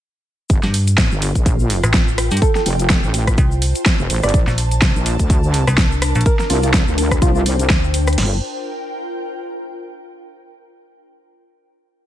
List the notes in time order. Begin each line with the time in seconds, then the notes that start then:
0.50 G1 F4, kick, closed hi-hat, shaker
0.63 G2, snare, shaker
0.74 open hi-hat
0.87 closed hi-hat, shaker
0.98 A1, kick, snare, closed hi-hat, shaker
1.11 G1, shaker
1.18 A#4, open hi-hat
1.33 A#1 G5, kick, closed hi-hat, shaker
1.46 kick, closed hi-hat, shaker
1.59 shaker
1.70 open hi-hat
1.83 A1, cross-stick, closed hi-hat, shaker
1.94 kick, snare, closed hi-hat, shaker
2.08 shaker
2.18 cross-stick, open hi-hat
2.31 G2, closed hi-hat, shaker
2.37 closed hi-hat
2.42 A4, kick, closed hi-hat, shaker
2.55 A4, snare, shaker
2.66 F1, open hi-hat
2.79 closed hi-hat, shaker
2.90 kick, snare, closed hi-hat, shaker
3.03 A1, shaker
3.08 C5
3.14 open hi-hat
3.27 A5, kick, cross-stick, closed hi-hat, shaker
3.38 C2, kick, closed hi-hat, shaker
3.51 shaker
3.62 open hi-hat
3.75 closed hi-hat, shaker
3.86 kick, snare, closed hi-hat, shaker
3.99 F1, shaker
4.10 A1, open hi-hat
4.23 G1 D5, cross-stick, closed hi-hat, shaker
4.29 closed hi-hat
4.34 A#1 D4, kick, closed hi-hat, shaker
4.47 A#1, snare, shaker
4.58 open hi-hat
4.71 closed hi-hat, shaker
4.82 C2, kick, snare, closed hi-hat, shaker
4.96 A#1, shaker
5.03 A#4, open hi-hat
5.19 D2, kick, closed hi-hat, shaker
5.30 kick, closed hi-hat, shaker
5.43 shaker
5.54 open hi-hat
5.67 C2, cross-stick, closed hi-hat, shaker
5.78 kick, snare, closed hi-hat, shaker
5.92 shaker
6.02 cross-stick, open hi-hat
6.15 A#1, closed hi-hat, shaker
6.21 closed hi-hat
6.26 A#4, kick, closed hi-hat, shaker
6.39 A#4, snare, shaker
6.50 C2 F4, open hi-hat
6.57 C5
6.63 F4, closed hi-hat, shaker
6.74 kick, snare, closed hi-hat, shaker
6.87 D2, shaker
6.98 open hi-hat
7.11 G5, kick, cross-stick, closed hi-hat, shaker
7.22 C2 F4, kick, closed hi-hat, shaker
7.35 F4, shaker
7.46 open hi-hat
7.59 closed hi-hat, shaker
7.70 D2, kick, snare, closed hi-hat, shaker
7.84 shaker
7.94 open hi-hat
8.07 cross-stick, closed hi-hat, shaker
8.13 closed hi-hat
8.18 G1 F4, snare, crash
8.26 A#4
8.34 G5